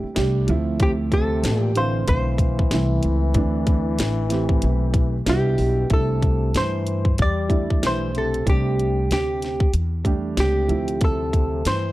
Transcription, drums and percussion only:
0.16 snare, closed hi-hat
0.48 closed hi-hat
0.80 kick, closed hi-hat
1.12 kick, closed hi-hat
1.44 snare, closed hi-hat
1.75 closed hi-hat
2.08 kick, closed hi-hat
2.38 kick, closed hi-hat
2.59 kick
2.71 snare, closed hi-hat
3.03 closed hi-hat
3.34 kick, closed hi-hat
3.67 kick, closed hi-hat
3.99 snare, closed hi-hat
4.30 snare, closed hi-hat
4.49 kick
4.62 closed hi-hat
4.94 kick, closed hi-hat
5.26 snare, closed hi-hat
5.58 open hi-hat
5.90 kick, closed hi-hat
6.22 kick, closed hi-hat
6.54 snare, closed hi-hat
6.87 closed hi-hat
7.05 kick
7.18 kick, closed hi-hat
7.50 kick, closed hi-hat
7.70 kick
7.83 snare, closed hi-hat
8.15 closed hi-hat
8.34 closed hi-hat
8.47 kick, closed hi-hat
8.79 closed hi-hat
9.11 snare, closed hi-hat
9.42 snare, closed hi-hat
9.60 kick
9.74 closed hi-hat
10.05 kick, closed hi-hat
10.37 snare, closed hi-hat
10.69 closed hi-hat
10.88 closed hi-hat
11.01 kick, closed hi-hat
11.33 kick, closed hi-hat
11.65 snare, closed hi-hat

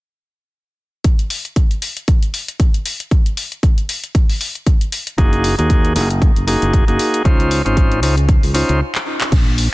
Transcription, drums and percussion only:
1.04 kick, closed hi-hat
1.19 closed hi-hat
1.30 open hi-hat
1.45 closed hi-hat
1.56 kick, closed hi-hat
1.71 closed hi-hat
1.82 open hi-hat
1.97 closed hi-hat
2.08 kick, closed hi-hat
2.23 closed hi-hat
2.34 open hi-hat
2.48 closed hi-hat
2.60 kick, closed hi-hat
2.74 closed hi-hat
2.86 open hi-hat
3.00 closed hi-hat
3.11 kick, closed hi-hat
3.26 closed hi-hat
3.37 open hi-hat
3.52 closed hi-hat
3.63 kick, closed hi-hat
3.78 closed hi-hat
3.89 open hi-hat
4.04 closed hi-hat
4.15 kick, closed hi-hat
4.30 open hi-hat
4.41 open hi-hat
4.55 closed hi-hat
4.67 kick, closed hi-hat
4.81 closed hi-hat
4.92 open hi-hat
5.07 closed hi-hat
5.18 kick, closed hi-hat
5.33 closed hi-hat
5.44 open hi-hat
5.59 closed hi-hat
5.70 kick, closed hi-hat
5.85 closed hi-hat
5.96 open hi-hat
6.10 closed hi-hat
6.22 kick, closed hi-hat
6.36 closed hi-hat
6.48 open hi-hat
6.62 closed hi-hat
6.73 kick, closed hi-hat
6.88 closed hi-hat
6.99 open hi-hat
7.14 closed hi-hat
7.25 kick, closed hi-hat
7.40 closed hi-hat
7.51 open hi-hat
7.66 closed hi-hat
7.77 kick, closed hi-hat
7.92 closed hi-hat
8.03 open hi-hat
8.17 closed hi-hat
8.29 kick, closed hi-hat
8.43 open hi-hat
8.55 open hi-hat
8.69 closed hi-hat
8.95 clap
9.21 clap
9.32 kick, closed hi-hat, crash, tambourine
9.58 open hi-hat, tambourine

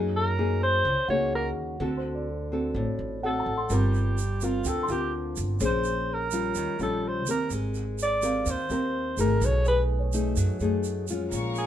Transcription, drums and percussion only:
3.70 shaker
3.94 shaker
4.18 shaker
4.41 shaker
4.64 shaker
4.88 shaker
5.36 shaker
5.60 shaker
5.84 shaker
6.31 shaker
6.55 shaker
6.79 shaker
7.26 shaker
7.50 shaker
7.74 shaker
7.98 shaker
8.22 shaker
8.46 shaker
8.70 shaker
9.18 shaker
9.42 shaker
9.65 shaker
10.13 shaker
10.36 shaker
10.60 shaker
10.84 shaker
11.08 shaker
11.32 shaker
11.55 shaker

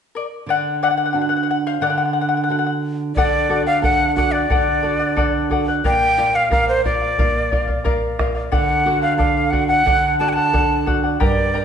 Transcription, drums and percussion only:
3.17 bombo low
3.83 bombo low
4.17 bombo low
4.50 bombo low
5.17 bombo low
5.51 bombo low
5.84 bombo low
6.51 bombo low
6.85 bombo low
7.19 bombo low
7.52 bombo low
7.69 bombo low
7.86 bombo low
8.19 bombo rim, bombo low
8.53 bombo low
9.19 bombo low
9.53 bombo low
9.87 bombo low
10.54 bombo low
10.88 bombo low
11.21 bombo low

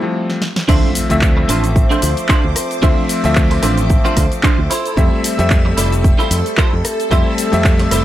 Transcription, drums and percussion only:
0.30 snare
0.42 snare
0.56 snare
0.69 kick, closed hi-hat, crash, shaker
0.95 open hi-hat, shaker
1.10 closed hi-hat, shaker
1.21 kick, clap, closed hi-hat, shaker
1.49 open hi-hat, shaker
1.64 closed hi-hat, shaker
1.76 kick, closed hi-hat, shaker
1.91 shaker
2.02 open hi-hat, shaker
2.17 closed hi-hat, shaker
2.29 kick, cross-stick, clap, closed hi-hat, shaker
2.56 cross-stick, open hi-hat, shaker
2.71 closed hi-hat, shaker
2.83 kick, closed hi-hat, shaker
3.09 open hi-hat, shaker
3.24 closed hi-hat, shaker
3.35 kick, clap, closed hi-hat, shaker
3.51 open hi-hat
3.63 cross-stick, open hi-hat, shaker
3.78 closed hi-hat, shaker
3.90 kick, closed hi-hat, shaker
4.05 shaker
4.17 kick, cross-stick, open hi-hat, shaker
4.32 closed hi-hat, shaker
4.43 kick, clap, closed hi-hat, shaker
4.71 open hi-hat, shaker
4.86 closed hi-hat, shaker
4.97 kick, closed hi-hat, shaker
5.24 open hi-hat, shaker
5.39 closed hi-hat, shaker
5.50 kick, clap, closed hi-hat, shaker
5.78 open hi-hat, shaker
5.93 closed hi-hat, shaker
6.04 kick, closed hi-hat, shaker
6.20 shaker
6.31 open hi-hat, shaker
6.46 closed hi-hat, shaker
6.57 kick, cross-stick, clap, closed hi-hat, shaker
6.85 cross-stick, open hi-hat, shaker
7.00 closed hi-hat, shaker
7.11 kick, closed hi-hat, shaker
7.38 open hi-hat, shaker
7.53 closed hi-hat, shaker
7.64 kick, clap, closed hi-hat, shaker
7.79 open hi-hat
7.91 cross-stick, open hi-hat, shaker

